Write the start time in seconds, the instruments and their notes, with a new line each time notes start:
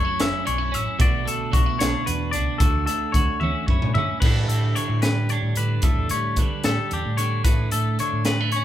Already playing: clean electric guitar F#2 A3 C#5
0.05 clean electric guitar E4
0.20 fingered electric bass F#1, clean electric guitar C#4 E5, snare, closed hi-hat
0.45 fingered electric bass B1, clean electric guitar D4 C#5, closed hi-hat
0.58 clean electric guitar E4
0.72 fingered electric bass A1, clean electric guitar C#4 E5, closed hi-hat
0.99 fingered electric bass B1, clean electric guitar B2 D3 A3 D4 F#4 D5, kick, closed hi-hat
1.25 clean electric guitar A3 A4, closed hi-hat
1.52 fingered electric bass B1, clean electric guitar D4 F#4, kick, closed hi-hat
1.66 clean electric guitar E4
1.79 fingered electric bass B1, clean electric guitar D4 C#5, snare, closed hi-hat
2.06 fingered electric bass E2, clean electric guitar F#4 B4, closed hi-hat
2.31 fingered electric bass C#2, clean electric guitar D4 D5, closed hi-hat
2.58 fingered electric bass D2, clean electric guitar D2 F#4 A4, kick, closed hi-hat
2.86 clean electric guitar A3 A4, closed hi-hat
3.12 fingered electric bass D2, clean electric guitar F#4 C#5, kick, closed hi-hat
3.40 fingered electric bass D2, clean electric guitar C#4 E5, high tom
3.66 fingered electric bass F#2, clean electric guitar E4 C#5, kick
3.82 mid tom
3.94 fingered electric bass D3, clean electric guitar C#4 E5, floor tom
4.20 fingered electric bass A2, clean electric guitar A2 D3 B4, kick, crash
4.25 clean electric guitar G3 D4 E4
4.48 fingered electric bass A2, clean electric guitar G3 A4, closed hi-hat
4.75 clean electric guitar D3 C#5, closed hi-hat
4.89 fingered electric bass A2
5.02 clean electric guitar G3 B4, snare, closed hi-hat
5.29 clean electric guitar D4 C#5, closed hi-hat
5.42 fingered electric bass A2
5.56 fingered electric bass A2, clean electric guitar D3 B4, closed hi-hat
5.82 fingered electric bass E2, clean electric guitar A2 A4, kick, closed hi-hat
5.98 fingered electric bass E2
6.09 fingered electric bass A2, clean electric guitar G3 C#5, closed hi-hat
6.36 clean electric guitar D3 B4, kick, closed hi-hat
6.64 fingered electric bass A2, clean electric guitar G3 A4, snare, closed hi-hat
6.91 fingered electric bass E2, clean electric guitar D4 G4, closed hi-hat
7.06 fingered electric bass A2
7.17 clean electric guitar D3 C#5, closed hi-hat
7.44 fingered electric bass A2, clean electric guitar A2 B4, kick, closed hi-hat
7.71 fingered electric bass A2, clean electric guitar A3 A4, closed hi-hat
7.99 clean electric guitar D3 C#5, closed hi-hat
8.13 fingered electric bass A2
8.25 clean electric guitar G3 B4, snare, closed hi-hat
8.41 clean electric guitar A3
8.52 clean electric guitar C#5, closed hi-hat
8.56 clean electric guitar C#4